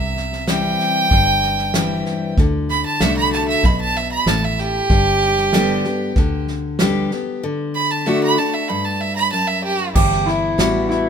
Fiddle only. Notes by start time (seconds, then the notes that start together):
Already playing: E5
0.49 G5
2.70 B5
2.85 A5
3.01 E5
3.17 B5
3.33 A5
3.48 E5
3.65 B5
3.81 A5
3.97 E5
4.12 B5
4.27 A5
4.44 E5
4.60 G4
7.75 B5
7.91 A5
8.07 E5
8.23 B5
8.38 A5
8.54 E5
8.68 B5
8.84 A5
9.01 E5
9.16 B5
9.32 A5
9.47 E5
9.63 G4